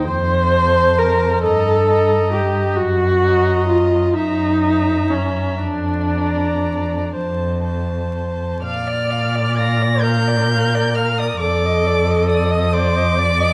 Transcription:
0.06 cello F2, viola C5
0.54 violin C5 A5
0.98 viola A#4
1.43 cello G2, viola A4, violin D#5 A#5
1.90 violin D#5 A#5
2.32 viola G4
2.76 cello F#2, viola F#4
3.22 violin D#5 A#5
3.68 viola F4
4.14 cello F#2, viola D#4, violin E5 A#5
4.62 violin E5 A#5
5.09 viola C#4
5.62 cello F2, viola D4
6.12 violin D5 A#5
7.13 cello F2, violin C5 A5
7.64 violin C5 A5
8.62 cello A#2, viola D5, violin F5 F6
8.87 violin D5
9.10 violin F5
9.35 violin D5
9.56 violin F5 A#6
9.82 violin D5
10.01 viola A#4, violin F5 G6
10.28 violin D5
10.52 violin F5
10.75 violin D5
10.94 violin F5 F6
11.18 violin D5 D#6
11.40 cello F2, viola A4, violin D5 D6
11.66 violin D#5
11.87 violin D5
12.10 violin D#5
12.29 violin D5 D#6
12.51 violin D#5
12.73 viola C5, violin D5 D6
12.96 violin D#5
13.18 viola D5, violin D5
13.41 violin D#5

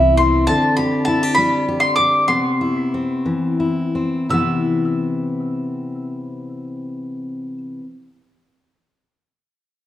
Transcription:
Already playing: upright bass C2, steel-string acoustic guitar E3 B3 C4 E4, mandolin E5
0.17 steel-string acoustic guitar C4, mandolin C6
0.47 steel-string acoustic guitar D3 C4, mandolin A5
0.77 steel-string acoustic guitar G4, mandolin B5
1.05 steel-string acoustic guitar E4, mandolin A5
1.23 steel-string acoustic guitar G4
1.35 steel-string acoustic guitar G3, mandolin B5
1.68 steel-string acoustic guitar G4
1.80 mandolin C6
1.96 steel-string acoustic guitar G4, mandolin D6
2.28 steel-string acoustic guitar C3 B3, mandolin C6
2.61 steel-string acoustic guitar E4
2.94 steel-string acoustic guitar C4
3.26 steel-string acoustic guitar E3
3.60 steel-string acoustic guitar E4
3.95 steel-string acoustic guitar C4
4.29 steel-string acoustic guitar C3 E3, mandolin E6
4.33 steel-string acoustic guitar B3 C4
4.38 steel-string acoustic guitar E4

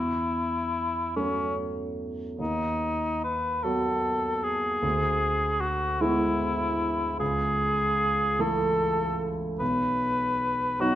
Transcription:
Already playing: grand piano E2, cor anglais E4
1.16 grand piano F#3 A3 C#4, cor anglais C#4
2.38 grand piano D#2, cor anglais D#4
3.24 cor anglais B4
3.64 grand piano F#3 B3 F#4, cor anglais A4
4.44 cor anglais G#4
4.82 grand piano D2
5.61 cor anglais F#4
6.01 grand piano G#3 B3 E4, cor anglais E4
7.19 grand piano C#2, cor anglais G#4
8.39 grand piano E3 A3 E4, cor anglais A4
9.60 grand piano B1, cor anglais B4
10.80 grand piano F#3 B3 D#4, cor anglais F#4

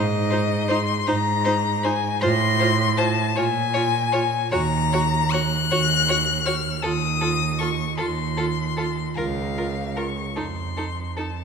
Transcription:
Already playing: cello G#2, violin D#5
0.30 viola D#4, violin C5
0.68 viola D#4, violin C5 C6
1.07 cello G#2, viola D#4, violin C5 A#5
1.45 viola D#4, violin C5
1.83 viola D#4, violin C5 G#5
2.21 cello A2, viola F4, violin C5 C6
2.60 viola F4, violin C5
2.97 viola F4, violin C5 A5
3.36 cello A#2, viola F4, violin C#5 G#5
3.74 viola F4, violin C#5
4.12 viola F4, violin C#5
4.51 cello D#2, viola F#4, violin C#5 A#5
4.93 viola F#4, violin C#5
5.32 viola F#4, violin C#5 F#6
5.71 cello D#2, viola F#4, violin C#5
6.09 viola F#4, violin C#5
6.45 viola F#4, violin C#5 F6
6.83 cello D#2, viola F4, violin A4 D#6
7.21 viola F4, violin A4
7.58 viola F4, violin A4 C#6
7.97 cello D#2, viola F4, violin A4 C6
8.37 viola F4, violin A4
8.77 viola F4, violin A4
9.16 cello C#2, viola F4, violin A#4 F5
9.57 viola F4, violin A#4
9.97 viola F4, violin A#4 C#6
10.36 cello F2, viola D#4, violin A4 C6
10.77 viola D#4, violin A4
11.17 viola D#4, violin A4 A5

